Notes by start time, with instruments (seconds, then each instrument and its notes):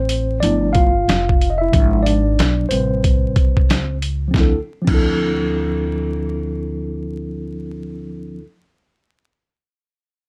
Already playing: upright bass A1, tine electric piano C4 C5
0.09 closed hi-hat
0.40 upright bass G1, tine electric piano F3 A3 B3 D4 E4 D5, closed hi-hat
0.73 tine electric piano F4 F5, kick, closed hi-hat
1.08 upright bass F1, snare, closed hi-hat
1.29 kick
1.41 closed hi-hat
1.50 tine electric piano D#5
1.58 tine electric piano E4 E5
1.72 upright bass G#1, tine electric piano F3 G#3 D4, kick, closed hi-hat
2.03 tine electric piano D4 D5, closed hi-hat
2.39 upright bass B1, snare, closed hi-hat
2.69 upright bass A1, tine electric piano C3 G3 C4 B4 C5, closed hi-hat
3.04 kick, closed hi-hat
3.36 kick, closed hi-hat
3.57 kick
3.69 upright bass C#2, snare, closed hi-hat
4.02 closed hi-hat
4.28 tine electric piano F3 C4
4.34 upright bass D2, tine electric piano D4 E4, kick, snare
4.40 tine electric piano A4
4.82 tine electric piano F3 C4
4.87 upright bass D2, tine electric piano D4 E4, kick, crash
4.94 tine electric piano A4